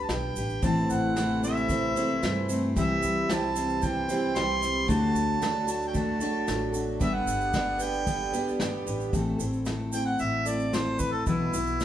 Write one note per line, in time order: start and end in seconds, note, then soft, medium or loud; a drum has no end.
0.00 0.38 D4 soft
0.00 0.37 G4 soft
0.00 0.36 B4 soft
0.00 0.12 A5 medium
0.09 0.33 B1 medium
0.09 0.63 G5 medium
0.09 snare medium
0.09 closed hi-hat medium
0.09 shaker medium
0.36 0.60 A1 medium
0.36 0.64 D4 soft
0.36 0.64 G4 soft
0.36 0.63 B4 soft
0.36 closed hi-hat soft
0.36 shaker medium
0.49 shaker soft
0.62 0.88 A1 medium
0.62 1.16 A2 medium
0.62 2.73 C3 medium
0.62 2.76 E3 medium
0.62 2.73 E3 medium
0.62 1.15 A3 medium
0.62 2.74 A3 medium
0.62 1.17 C4 medium
0.62 1.18 E4 medium
0.62 4.86 E4 medium
0.62 1.19 C5 medium
0.62 0.92 A5 medium
0.62 kick medium
0.62 closed hi-hat medium
0.62 shaker medium
0.89 1.92 A1 medium
0.89 1.43 F#5 medium
0.89 closed hi-hat soft
0.89 shaker medium
1.16 1.43 A3 medium
1.16 1.43 C4 medium
1.16 1.42 E4 medium
1.16 1.97 A4 medium
1.16 1.41 C5 medium
1.16 snare medium
1.16 closed hi-hat medium
1.16 shaker medium
1.42 1.67 A3 soft
1.42 1.68 C4 soft
1.42 1.70 E4 soft
1.42 1.69 C5 medium
1.42 2.46 E5 medium
1.42 closed hi-hat soft
1.42 shaker medium
1.57 shaker soft
1.68 1.95 A3 medium
1.68 1.96 C4 medium
1.68 1.96 E4 medium
1.68 1.94 C5 medium
1.68 kick medium
1.68 closed hi-hat medium
1.68 shaker medium
1.95 2.51 A3 soft
1.95 2.49 C4 soft
1.95 2.49 E4 soft
1.95 2.21 A4 medium
1.95 2.48 C5 medium
1.95 closed hi-hat soft
1.95 shaker medium
2.23 2.73 G2 medium
2.23 2.81 A4 medium
2.23 snare medium
2.23 closed hi-hat medium
2.23 shaker medium
2.49 2.76 A3 soft
2.49 2.75 C4 soft
2.49 2.76 E4 medium
2.49 2.76 C5 medium
2.49 closed hi-hat soft
2.49 shaker medium
2.74 3.01 C2 medium
2.74 4.86 C3 medium
2.74 3.29 C3 medium
2.74 4.86 E3 medium
2.74 3.29 E3 medium
2.74 4.86 G3 medium
2.74 3.27 G3 medium
2.74 3.28 C4 medium
2.74 3.29 E4 medium
2.74 3.30 C5 medium
2.74 3.34 E5 medium
2.74 kick medium
2.74 closed hi-hat medium
2.74 shaker medium
3.03 4.05 C2 medium
3.03 closed hi-hat soft
3.03 shaker medium
3.28 3.55 G3 medium
3.28 3.56 C4 soft
3.28 3.55 E4 medium
3.28 4.09 G4 medium
3.28 3.54 C5 medium
3.28 snare loud
3.28 closed hi-hat medium
3.28 shaker medium
3.33 3.85 A5 medium
3.55 3.81 G3 soft
3.55 3.83 C4 soft
3.55 3.83 E4 soft
3.55 3.82 C5 medium
3.55 closed hi-hat soft
3.55 shaker medium
3.69 shaker soft
3.82 4.09 G3 soft
3.82 4.09 C4 soft
3.82 4.08 E4 medium
3.82 4.07 C5 medium
3.82 4.38 G5 medium
3.82 kick medium
3.82 closed hi-hat medium
3.82 shaker medium
4.08 4.63 G3 soft
4.08 4.62 C4 soft
4.08 4.61 E4 soft
4.08 4.35 G4 medium
4.08 4.60 C5 soft
4.08 closed hi-hat soft
4.08 shaker medium
4.36 4.86 C2 medium
4.36 4.94 G4 medium
4.36 4.89 C6 loud
4.36 snare medium
4.36 closed hi-hat medium
4.36 shaker medium
4.61 4.88 G3 soft
4.61 4.88 C4 soft
4.61 4.89 E4 soft
4.61 4.88 C5 soft
4.61 closed hi-hat soft
4.61 shaker medium
4.86 5.14 D2 medium
4.86 9.09 D3 medium
4.86 5.41 D3 medium
4.86 6.98 F#3 medium
4.86 7.01 F#3 medium
4.86 6.98 A3 medium
4.86 5.39 A3 medium
4.86 5.41 D4 medium
4.86 6.98 F#4 medium
4.86 5.41 F#4 medium
4.86 5.41 A4 medium
4.86 5.65 A5 medium
4.86 kick medium
4.86 closed hi-hat medium
4.86 shaker medium
5.15 6.17 D2 medium
5.15 closed hi-hat soft
5.15 shaker medium
5.40 5.67 A3 medium
5.40 5.68 D4 medium
5.40 5.66 F#4 medium
5.40 5.64 A4 medium
5.40 snare medium
5.40 closed hi-hat medium
5.40 shaker medium
5.66 5.93 D4 soft
5.66 5.94 F#4 soft
5.66 5.93 A4 soft
5.66 closed hi-hat soft
5.66 shaker medium
5.70 5.87 A5 medium
5.82 shaker soft
5.87 5.97 G5 medium
5.93 6.21 A3 medium
5.93 6.21 D4 medium
5.93 6.20 F#4 medium
5.93 6.18 A4 medium
5.93 6.75 A5 medium
5.93 kick medium
5.93 closed hi-hat medium
5.93 shaker medium
6.19 7.00 A3 medium
6.19 6.75 D4 soft
6.19 6.73 F#4 soft
6.19 6.71 A4 soft
6.19 closed hi-hat soft
6.19 shaker medium
6.48 6.99 A1 medium
6.48 7.07 A4 medium
6.48 snare medium
6.48 closed hi-hat medium
6.48 shaker medium
6.72 6.99 D4 soft
6.72 7.01 F#4 soft
6.72 7.00 A4 soft
6.72 closed hi-hat soft
6.72 shaker medium
7.00 7.26 G1 medium
7.00 7.51 G3 medium
7.00 9.12 G3 medium
7.00 7.52 B3 medium
7.00 9.12 B3 medium
7.00 7.52 D4 medium
7.00 7.53 G4 medium
7.00 9.12 G4 medium
7.00 7.54 B4 medium
7.00 7.15 E5 medium
7.00 kick medium
7.00 closed hi-hat medium
7.00 shaker medium
7.14 7.83 F#5 medium
7.26 8.29 G1 medium
7.26 closed hi-hat soft
7.26 shaker medium
7.41 shaker soft
7.52 7.80 G3 medium
7.52 8.06 B3 medium
7.52 7.80 D4 medium
7.52 7.79 G4 medium
7.52 7.77 B4 medium
7.52 kick medium
7.52 snare medium
7.52 closed hi-hat medium
7.52 shaker medium
7.78 8.06 D4 soft
7.78 8.07 G4 soft
7.78 8.06 B4 soft
7.78 8.61 G5 medium
7.78 closed hi-hat soft
7.78 shaker medium
7.94 shaker soft
8.06 8.33 G3 medium
8.06 8.32 B3 medium
8.06 8.34 D4 medium
8.06 8.33 G4 medium
8.06 8.31 B4 medium
8.06 kick medium
8.06 closed hi-hat medium
8.06 shaker medium
8.32 9.19 B3 medium
8.32 8.88 D4 soft
8.32 8.86 G4 soft
8.32 8.85 B4 medium
8.32 closed hi-hat soft
8.32 shaker medium
8.48 shaker soft
8.59 8.84 G1 medium
8.59 9.19 G4 medium
8.59 snare medium
8.59 closed hi-hat medium
8.59 shaker medium
8.86 9.11 A1 medium
8.86 9.13 D4 soft
8.86 9.14 G4 soft
8.86 9.13 B4 medium
8.86 closed hi-hat soft
8.86 shaker medium
9.00 shaker soft
9.13 9.39 A1 medium
9.13 9.40 A2 medium
9.13 9.40 E3 medium
9.13 9.40 A3 medium
9.13 9.40 C4 medium
9.13 9.38 E4 medium
9.13 9.37 A4 medium
9.13 kick medium
9.13 closed hi-hat medium
9.13 shaker medium
9.38 10.16 A1 medium
9.38 9.64 A3 soft
9.38 9.65 C4 soft
9.38 9.66 E4 soft
9.38 9.66 A4 soft
9.38 closed hi-hat soft
9.38 shaker medium
9.53 shaker soft
9.65 9.93 A3 medium
9.65 9.93 C4 medium
9.65 9.92 E4 medium
9.65 9.90 A4 medium
9.65 snare medium
9.65 closed hi-hat medium
9.65 shaker medium
9.91 10.47 A3 soft
9.91 10.47 C4 soft
9.91 10.47 E4 soft
9.91 10.45 A4 soft
9.91 10.05 G5 medium
9.91 closed hi-hat soft
9.91 shaker medium
10.06 10.22 F#5 medium
10.19 11.23 A1 medium
10.19 10.49 E5 medium
10.19 closed hi-hat medium
10.19 shaker medium
10.46 10.73 C4 soft
10.46 10.73 E4 soft
10.46 10.73 A4 medium
10.46 10.75 D5 medium
10.46 closed hi-hat soft
10.46 shaker medium
10.50 10.71 A3 soft
10.60 shaker soft
10.72 11.26 A3 soft
10.72 11.27 C4 medium
10.72 11.28 E4 medium
10.72 11.28 A4 medium
10.72 11.01 C5 medium
10.72 snare medium
10.72 closed hi-hat medium
10.72 shaker medium
10.99 11.14 B4 medium
10.99 kick medium
10.99 closed hi-hat soft
10.99 shaker medium
11.12 11.26 A4 medium
11.26 11.52 B1 medium
11.26 11.54 B2 medium
11.26 11.54 E3 medium
11.26 11.54 B3 medium
11.26 11.85 E4 medium
11.26 11.53 E4 medium
11.26 11.53 F#4 medium
11.26 11.52 B4 medium
11.26 kick medium
11.26 closed hi-hat medium
11.26 shaker medium
11.53 11.85 B1 medium
11.53 11.78 B3 soft
11.53 11.79 E4 soft
11.53 11.80 F#4 soft
11.53 11.80 B4 soft
11.53 closed hi-hat soft
11.53 shaker medium
11.67 shaker soft
11.79 11.85 B3 medium
11.79 11.85 E4 medium
11.79 11.85 F#4 medium
11.79 snare medium
11.79 closed hi-hat medium
11.79 shaker medium